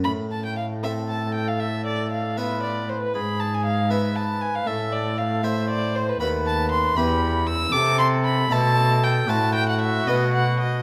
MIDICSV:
0, 0, Header, 1, 5, 480
1, 0, Start_track
1, 0, Tempo, 512383
1, 47, Time_signature, 6, 3, 24, 8
1, 7726, Tempo, 525394
1, 10080, End_track
2, 0, Start_track
2, 0, Title_t, "Violin"
2, 0, Program_c, 0, 40
2, 37, Note_on_c, 0, 83, 92
2, 111, Note_off_c, 0, 83, 0
2, 290, Note_on_c, 0, 81, 70
2, 412, Note_off_c, 0, 81, 0
2, 423, Note_on_c, 0, 79, 72
2, 526, Note_off_c, 0, 79, 0
2, 531, Note_on_c, 0, 77, 75
2, 606, Note_off_c, 0, 77, 0
2, 779, Note_on_c, 0, 76, 78
2, 854, Note_off_c, 0, 76, 0
2, 1020, Note_on_c, 0, 81, 79
2, 1253, Note_off_c, 0, 81, 0
2, 1258, Note_on_c, 0, 79, 79
2, 1382, Note_on_c, 0, 77, 83
2, 1396, Note_off_c, 0, 79, 0
2, 1494, Note_on_c, 0, 76, 87
2, 1508, Note_off_c, 0, 77, 0
2, 1734, Note_off_c, 0, 76, 0
2, 1739, Note_on_c, 0, 74, 84
2, 1972, Note_off_c, 0, 74, 0
2, 1978, Note_on_c, 0, 77, 69
2, 2217, Note_on_c, 0, 76, 79
2, 2231, Note_off_c, 0, 77, 0
2, 2456, Note_off_c, 0, 76, 0
2, 2461, Note_on_c, 0, 74, 67
2, 2704, Note_on_c, 0, 72, 68
2, 2718, Note_off_c, 0, 74, 0
2, 2825, Note_off_c, 0, 72, 0
2, 2833, Note_on_c, 0, 71, 72
2, 2950, Note_on_c, 0, 83, 89
2, 2964, Note_off_c, 0, 71, 0
2, 3182, Note_on_c, 0, 81, 86
2, 3196, Note_off_c, 0, 83, 0
2, 3317, Note_on_c, 0, 80, 78
2, 3331, Note_off_c, 0, 81, 0
2, 3417, Note_off_c, 0, 80, 0
2, 3422, Note_on_c, 0, 77, 86
2, 3656, Note_on_c, 0, 76, 74
2, 3670, Note_off_c, 0, 77, 0
2, 3893, Note_on_c, 0, 81, 76
2, 3907, Note_off_c, 0, 76, 0
2, 4132, Note_on_c, 0, 80, 74
2, 4146, Note_off_c, 0, 81, 0
2, 4262, Note_on_c, 0, 77, 83
2, 4276, Note_off_c, 0, 80, 0
2, 4368, Note_on_c, 0, 76, 80
2, 4382, Note_off_c, 0, 77, 0
2, 4609, Note_on_c, 0, 74, 85
2, 4623, Note_off_c, 0, 76, 0
2, 4848, Note_on_c, 0, 77, 80
2, 4862, Note_off_c, 0, 74, 0
2, 5093, Note_on_c, 0, 76, 82
2, 5108, Note_off_c, 0, 77, 0
2, 5330, Note_off_c, 0, 76, 0
2, 5336, Note_on_c, 0, 74, 90
2, 5575, Note_on_c, 0, 72, 80
2, 5589, Note_off_c, 0, 74, 0
2, 5703, Note_on_c, 0, 71, 81
2, 5717, Note_off_c, 0, 72, 0
2, 5801, Note_off_c, 0, 71, 0
2, 5806, Note_on_c, 0, 83, 105
2, 5881, Note_off_c, 0, 83, 0
2, 6049, Note_on_c, 0, 81, 108
2, 6281, Note_off_c, 0, 81, 0
2, 6288, Note_on_c, 0, 84, 105
2, 6527, Note_on_c, 0, 83, 92
2, 6541, Note_off_c, 0, 84, 0
2, 6993, Note_on_c, 0, 88, 106
2, 7007, Note_off_c, 0, 83, 0
2, 7231, Note_on_c, 0, 86, 124
2, 7245, Note_off_c, 0, 88, 0
2, 7477, Note_off_c, 0, 86, 0
2, 7481, Note_on_c, 0, 84, 113
2, 7556, Note_off_c, 0, 84, 0
2, 7723, Note_on_c, 0, 83, 100
2, 7973, Note_on_c, 0, 81, 120
2, 7986, Note_off_c, 0, 83, 0
2, 8443, Note_on_c, 0, 79, 100
2, 8457, Note_off_c, 0, 81, 0
2, 8679, Note_on_c, 0, 81, 113
2, 8693, Note_off_c, 0, 79, 0
2, 8908, Note_off_c, 0, 81, 0
2, 8913, Note_on_c, 0, 79, 110
2, 9028, Note_off_c, 0, 79, 0
2, 9040, Note_on_c, 0, 78, 91
2, 9145, Note_off_c, 0, 78, 0
2, 9150, Note_on_c, 0, 76, 93
2, 9391, Note_on_c, 0, 75, 88
2, 9405, Note_off_c, 0, 76, 0
2, 9627, Note_off_c, 0, 75, 0
2, 9632, Note_on_c, 0, 78, 86
2, 9868, Note_off_c, 0, 78, 0
2, 9873, Note_on_c, 0, 75, 78
2, 10080, Note_off_c, 0, 75, 0
2, 10080, End_track
3, 0, Start_track
3, 0, Title_t, "Oboe"
3, 0, Program_c, 1, 68
3, 784, Note_on_c, 1, 69, 62
3, 2227, Note_on_c, 1, 71, 67
3, 2241, Note_off_c, 1, 69, 0
3, 2942, Note_off_c, 1, 71, 0
3, 2948, Note_on_c, 1, 68, 68
3, 3659, Note_on_c, 1, 71, 64
3, 3673, Note_off_c, 1, 68, 0
3, 4380, Note_on_c, 1, 69, 68
3, 4394, Note_off_c, 1, 71, 0
3, 5089, Note_off_c, 1, 69, 0
3, 5094, Note_on_c, 1, 72, 74
3, 5795, Note_off_c, 1, 72, 0
3, 5811, Note_on_c, 1, 71, 76
3, 6510, Note_off_c, 1, 71, 0
3, 6527, Note_on_c, 1, 67, 75
3, 6981, Note_off_c, 1, 67, 0
3, 7237, Note_on_c, 1, 69, 83
3, 7922, Note_off_c, 1, 69, 0
3, 7961, Note_on_c, 1, 69, 77
3, 8666, Note_on_c, 1, 66, 89
3, 8680, Note_off_c, 1, 69, 0
3, 10080, Note_off_c, 1, 66, 0
3, 10080, End_track
4, 0, Start_track
4, 0, Title_t, "Harpsichord"
4, 0, Program_c, 2, 6
4, 49, Note_on_c, 2, 45, 50
4, 787, Note_on_c, 2, 60, 40
4, 790, Note_on_c, 2, 69, 42
4, 1305, Note_off_c, 2, 60, 0
4, 1307, Note_off_c, 2, 69, 0
4, 2225, Note_on_c, 2, 59, 43
4, 2225, Note_on_c, 2, 65, 42
4, 2230, Note_on_c, 2, 71, 45
4, 2744, Note_off_c, 2, 59, 0
4, 2744, Note_off_c, 2, 65, 0
4, 2748, Note_off_c, 2, 71, 0
4, 2909, Note_off_c, 2, 45, 0
4, 2946, Note_on_c, 2, 44, 52
4, 3657, Note_on_c, 2, 59, 43
4, 3663, Note_on_c, 2, 64, 43
4, 3666, Note_on_c, 2, 71, 49
4, 4172, Note_off_c, 2, 59, 0
4, 4176, Note_off_c, 2, 64, 0
4, 4178, Note_off_c, 2, 71, 0
4, 4337, Note_off_c, 2, 44, 0
4, 4372, Note_on_c, 2, 45, 58
4, 5091, Note_on_c, 2, 57, 55
4, 5095, Note_on_c, 2, 64, 46
4, 5099, Note_on_c, 2, 72, 49
4, 5607, Note_off_c, 2, 57, 0
4, 5610, Note_off_c, 2, 64, 0
4, 5612, Note_off_c, 2, 72, 0
4, 5768, Note_off_c, 2, 45, 0
4, 5810, Note_on_c, 2, 39, 60
4, 5811, Note_on_c, 2, 57, 51
4, 5816, Note_on_c, 2, 66, 51
4, 5822, Note_on_c, 2, 71, 48
4, 6486, Note_off_c, 2, 39, 0
4, 6487, Note_off_c, 2, 57, 0
4, 6489, Note_off_c, 2, 66, 0
4, 6492, Note_off_c, 2, 71, 0
4, 6528, Note_on_c, 2, 40, 66
4, 6535, Note_on_c, 2, 64, 57
4, 6540, Note_on_c, 2, 71, 50
4, 7206, Note_off_c, 2, 40, 0
4, 7209, Note_off_c, 2, 64, 0
4, 7212, Note_off_c, 2, 71, 0
4, 7242, Note_on_c, 2, 48, 68
4, 7924, Note_off_c, 2, 48, 0
4, 7960, Note_on_c, 2, 47, 72
4, 7960, Note_on_c, 2, 57, 56
4, 7964, Note_on_c, 2, 64, 58
4, 7968, Note_on_c, 2, 72, 56
4, 8472, Note_off_c, 2, 57, 0
4, 8475, Note_off_c, 2, 64, 0
4, 8477, Note_off_c, 2, 72, 0
4, 8634, Note_off_c, 2, 47, 0
4, 8668, Note_on_c, 2, 57, 49
4, 8669, Note_on_c, 2, 45, 68
4, 8674, Note_on_c, 2, 64, 58
4, 8679, Note_on_c, 2, 72, 53
4, 9353, Note_off_c, 2, 45, 0
4, 9353, Note_off_c, 2, 57, 0
4, 9355, Note_off_c, 2, 64, 0
4, 9358, Note_off_c, 2, 72, 0
4, 9393, Note_on_c, 2, 57, 52
4, 9394, Note_on_c, 2, 47, 66
4, 9397, Note_on_c, 2, 59, 52
4, 9402, Note_on_c, 2, 71, 49
4, 10080, Note_off_c, 2, 47, 0
4, 10080, Note_off_c, 2, 57, 0
4, 10080, Note_off_c, 2, 59, 0
4, 10080, Note_off_c, 2, 71, 0
4, 10080, End_track
5, 0, Start_track
5, 0, Title_t, "Cello"
5, 0, Program_c, 3, 42
5, 47, Note_on_c, 3, 45, 54
5, 2946, Note_on_c, 3, 44, 59
5, 2960, Note_off_c, 3, 45, 0
5, 4368, Note_off_c, 3, 44, 0
5, 4373, Note_on_c, 3, 45, 65
5, 5778, Note_off_c, 3, 45, 0
5, 5807, Note_on_c, 3, 39, 70
5, 6485, Note_off_c, 3, 39, 0
5, 6522, Note_on_c, 3, 40, 82
5, 7226, Note_off_c, 3, 40, 0
5, 7237, Note_on_c, 3, 48, 78
5, 7944, Note_off_c, 3, 48, 0
5, 7963, Note_on_c, 3, 47, 83
5, 8658, Note_off_c, 3, 47, 0
5, 8670, Note_on_c, 3, 45, 75
5, 9376, Note_off_c, 3, 45, 0
5, 9388, Note_on_c, 3, 47, 79
5, 10080, Note_off_c, 3, 47, 0
5, 10080, End_track
0, 0, End_of_file